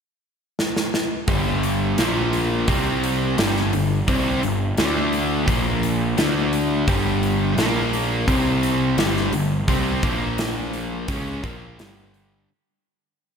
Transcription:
0.59 snare
0.76 snare
0.94 snare
1.28 G1 G2 D3 G3, kick, open hi-hat
1.63 open hi-hat
1.98 A#1 A#2 F3 A#3, snare, open hi-hat
2.33 open hi-hat
2.68 C2 C3 G3 C4, kick, open hi-hat
3.04 open hi-hat
3.37 G1 G2 D3 G3, snare, open hi-hat
3.57 snare
3.73 G1 G2 D3, open hi-hat
4.07 C2 C3 G3 C4, kick, open hi-hat
4.43 G1 G2 D3, open hi-hat
4.77 D2 D3 A3 D4, snare, open hi-hat
5.13 open hi-hat
5.47 A#1 A#2 F3 A#3, kick, open hi-hat
5.83 open hi-hat
6.17 D2 D3 A3 D4, snare, open hi-hat
6.53 open hi-hat
6.88 G1 G2 D3 G3, kick, open hi-hat
7.23 open hi-hat
7.57 A#1 A#2 F3 A#3, snare, open hi-hat
7.93 open hi-hat
8.27 C2 C3 G3 C4, kick, open hi-hat
8.63 open hi-hat
8.98 G1 G2 D3 G3, snare, open hi-hat
9.17 snare
9.33 G1 G2 D3, open hi-hat
9.68 C2 C3 G3 C4, kick, open hi-hat
10.03 A#1 A#2 F3 A#3, kick, open hi-hat
10.38 snare, open hi-hat
10.73 open hi-hat
11.08 C#2 C#3 G#3 C#4, kick, open hi-hat
11.43 A#1 A#2 F3 A#3, kick, open hi-hat
11.78 G1 G2 D3 G3, snare, open hi-hat
12.14 open hi-hat

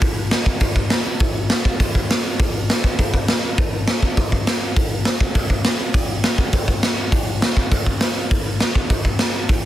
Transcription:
0.01 kick, open hi-hat
0.31 snare, open hi-hat
0.46 kick
0.60 kick, open hi-hat
0.76 kick
0.90 snare, open hi-hat
1.20 kick, open hi-hat
1.49 snare, open hi-hat
1.65 kick
1.80 kick, open hi-hat
1.95 kick
2.10 snare, open hi-hat
2.40 kick, open hi-hat
2.69 snare, open hi-hat
2.84 kick
2.99 kick, open hi-hat
3.14 kick
3.28 snare, open hi-hat
3.58 kick, open hi-hat
3.87 snare, open hi-hat
4.02 kick
4.17 kick, open hi-hat
4.32 kick
4.47 snare, open hi-hat
4.76 kick, open hi-hat
5.05 snare, open hi-hat
5.21 kick
5.35 kick, open hi-hat
5.50 kick
5.64 snare, open hi-hat
5.94 kick, open hi-hat
6.24 snare, open hi-hat
6.38 kick
6.53 kick, open hi-hat
6.68 kick
6.83 snare, open hi-hat
7.12 kick, open hi-hat
7.42 snare, open hi-hat
7.57 kick
7.71 kick, open hi-hat
7.86 kick
8.00 snare, open hi-hat
8.31 kick, open hi-hat
8.60 snare, open hi-hat
8.75 kick
8.90 kick, open hi-hat
9.05 kick
9.19 snare, open hi-hat
9.49 kick, open hi-hat

